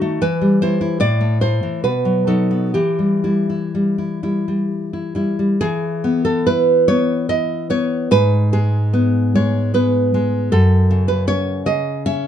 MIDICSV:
0, 0, Header, 1, 2, 480
1, 0, Start_track
1, 0, Key_signature, 1, "minor"
1, 0, Tempo, 778210
1, 137, Time_signature, 3, 2, 24, 8
1, 620, Tempo, 832178
1, 1100, Tempo, 921659
1, 1580, Tempo, 964630
1, 2540, Tempo, 906344
1, 3020, Key_signature, 4, "major"
1, 3020, Tempo, 849858
1, 3500, Tempo, 825309
1, 5420, Tempo, 774194
1, 6987, End_track
2, 0, Start_track
2, 0, Title_t, "Nylon-string guitar"
2, 0, Program_c, 0, 24
2, 0, Note_on_c, 0, 51, 71
2, 0, Note_on_c, 0, 63, 59
2, 0, Note_on_c, 0, 66, 68
2, 9, Note_on_c, 0, 57, 62
2, 109, Note_off_c, 0, 51, 0
2, 112, Note_off_c, 0, 66, 0
2, 131, Note_off_c, 0, 63, 0
2, 132, Note_off_c, 0, 57, 0
2, 133, Note_on_c, 0, 52, 82
2, 134, Note_on_c, 0, 71, 92
2, 255, Note_on_c, 0, 55, 56
2, 364, Note_off_c, 0, 71, 0
2, 377, Note_off_c, 0, 55, 0
2, 382, Note_on_c, 0, 72, 96
2, 385, Note_on_c, 0, 55, 49
2, 387, Note_on_c, 0, 64, 56
2, 491, Note_off_c, 0, 64, 0
2, 499, Note_on_c, 0, 64, 57
2, 601, Note_off_c, 0, 55, 0
2, 604, Note_off_c, 0, 52, 0
2, 614, Note_off_c, 0, 72, 0
2, 616, Note_on_c, 0, 45, 82
2, 617, Note_off_c, 0, 64, 0
2, 620, Note_on_c, 0, 74, 106
2, 736, Note_on_c, 0, 57, 53
2, 846, Note_off_c, 0, 74, 0
2, 847, Note_off_c, 0, 57, 0
2, 853, Note_on_c, 0, 57, 55
2, 855, Note_on_c, 0, 72, 87
2, 857, Note_on_c, 0, 64, 53
2, 977, Note_off_c, 0, 45, 0
2, 979, Note_on_c, 0, 52, 49
2, 1076, Note_off_c, 0, 57, 0
2, 1078, Note_off_c, 0, 64, 0
2, 1089, Note_off_c, 0, 72, 0
2, 1100, Note_on_c, 0, 71, 88
2, 1102, Note_off_c, 0, 52, 0
2, 1103, Note_on_c, 0, 47, 71
2, 1211, Note_on_c, 0, 54, 53
2, 1319, Note_off_c, 0, 54, 0
2, 1323, Note_off_c, 0, 71, 0
2, 1325, Note_on_c, 0, 54, 52
2, 1328, Note_on_c, 0, 69, 75
2, 1331, Note_on_c, 0, 63, 54
2, 1449, Note_on_c, 0, 59, 48
2, 1556, Note_off_c, 0, 54, 0
2, 1558, Note_off_c, 0, 63, 0
2, 1567, Note_off_c, 0, 47, 0
2, 1567, Note_off_c, 0, 69, 0
2, 1570, Note_on_c, 0, 67, 77
2, 1573, Note_on_c, 0, 52, 66
2, 1577, Note_off_c, 0, 59, 0
2, 1694, Note_on_c, 0, 55, 43
2, 1813, Note_off_c, 0, 55, 0
2, 1818, Note_on_c, 0, 55, 39
2, 1820, Note_on_c, 0, 64, 41
2, 1941, Note_off_c, 0, 64, 0
2, 1947, Note_on_c, 0, 64, 48
2, 2065, Note_off_c, 0, 55, 0
2, 2071, Note_on_c, 0, 55, 49
2, 2183, Note_off_c, 0, 64, 0
2, 2189, Note_on_c, 0, 64, 44
2, 2306, Note_off_c, 0, 55, 0
2, 2306, Note_off_c, 0, 64, 0
2, 2311, Note_on_c, 0, 55, 43
2, 2313, Note_on_c, 0, 64, 45
2, 2430, Note_off_c, 0, 55, 0
2, 2436, Note_on_c, 0, 55, 42
2, 2516, Note_off_c, 0, 67, 0
2, 2663, Note_off_c, 0, 64, 0
2, 2670, Note_on_c, 0, 64, 48
2, 2777, Note_off_c, 0, 55, 0
2, 2783, Note_off_c, 0, 64, 0
2, 2784, Note_on_c, 0, 55, 46
2, 2789, Note_on_c, 0, 64, 52
2, 2906, Note_off_c, 0, 55, 0
2, 2912, Note_on_c, 0, 55, 46
2, 2995, Note_off_c, 0, 52, 0
2, 3001, Note_off_c, 0, 64, 0
2, 3023, Note_off_c, 0, 55, 0
2, 3027, Note_on_c, 0, 68, 114
2, 3031, Note_on_c, 0, 52, 83
2, 3272, Note_on_c, 0, 59, 59
2, 3369, Note_off_c, 0, 68, 0
2, 3389, Note_on_c, 0, 69, 94
2, 3505, Note_off_c, 0, 69, 0
2, 3512, Note_on_c, 0, 71, 101
2, 3517, Note_on_c, 0, 64, 74
2, 3742, Note_off_c, 0, 71, 0
2, 3749, Note_off_c, 0, 59, 0
2, 3753, Note_on_c, 0, 73, 102
2, 3756, Note_on_c, 0, 59, 61
2, 3983, Note_off_c, 0, 73, 0
2, 3985, Note_off_c, 0, 64, 0
2, 3992, Note_on_c, 0, 64, 63
2, 3993, Note_on_c, 0, 75, 109
2, 4219, Note_off_c, 0, 75, 0
2, 4222, Note_off_c, 0, 59, 0
2, 4229, Note_on_c, 0, 59, 70
2, 4233, Note_on_c, 0, 73, 107
2, 4444, Note_off_c, 0, 52, 0
2, 4455, Note_off_c, 0, 73, 0
2, 4462, Note_off_c, 0, 59, 0
2, 4463, Note_off_c, 0, 64, 0
2, 4469, Note_on_c, 0, 44, 90
2, 4472, Note_on_c, 0, 71, 111
2, 4696, Note_off_c, 0, 71, 0
2, 4711, Note_on_c, 0, 56, 58
2, 4712, Note_on_c, 0, 68, 95
2, 4948, Note_on_c, 0, 59, 70
2, 5171, Note_off_c, 0, 68, 0
2, 5186, Note_off_c, 0, 56, 0
2, 5192, Note_on_c, 0, 56, 57
2, 5192, Note_on_c, 0, 73, 91
2, 5410, Note_off_c, 0, 59, 0
2, 5413, Note_off_c, 0, 73, 0
2, 5416, Note_on_c, 0, 59, 68
2, 5419, Note_on_c, 0, 71, 90
2, 5658, Note_off_c, 0, 56, 0
2, 5665, Note_on_c, 0, 56, 63
2, 5879, Note_off_c, 0, 44, 0
2, 5879, Note_off_c, 0, 71, 0
2, 5898, Note_off_c, 0, 59, 0
2, 5899, Note_on_c, 0, 69, 105
2, 5901, Note_off_c, 0, 56, 0
2, 5903, Note_on_c, 0, 42, 89
2, 6139, Note_on_c, 0, 49, 59
2, 6244, Note_off_c, 0, 69, 0
2, 6248, Note_on_c, 0, 71, 90
2, 6367, Note_off_c, 0, 71, 0
2, 6367, Note_on_c, 0, 61, 72
2, 6370, Note_on_c, 0, 73, 106
2, 6598, Note_off_c, 0, 49, 0
2, 6603, Note_off_c, 0, 42, 0
2, 6605, Note_off_c, 0, 73, 0
2, 6606, Note_on_c, 0, 49, 63
2, 6608, Note_on_c, 0, 75, 99
2, 6844, Note_off_c, 0, 75, 0
2, 6846, Note_off_c, 0, 61, 0
2, 6854, Note_on_c, 0, 61, 72
2, 6854, Note_on_c, 0, 76, 110
2, 6987, Note_off_c, 0, 49, 0
2, 6987, Note_off_c, 0, 61, 0
2, 6987, Note_off_c, 0, 76, 0
2, 6987, End_track
0, 0, End_of_file